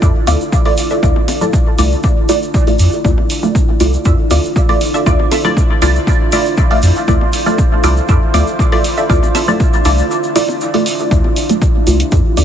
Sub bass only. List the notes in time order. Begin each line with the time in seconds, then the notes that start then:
0.02 F2
0.27 D2
1.03 D2
1.79 C2
2.79 F2
3.05 D2
3.80 C2
4.05 F2
4.31 D2
5.06 D2
5.82 C2
6.83 F2
7.08 D2
7.84 C2
8.09 F2
8.34 D2
9.10 D2
9.85 C2
11.11 D2
11.87 C2
12.12 F2
12.37 D2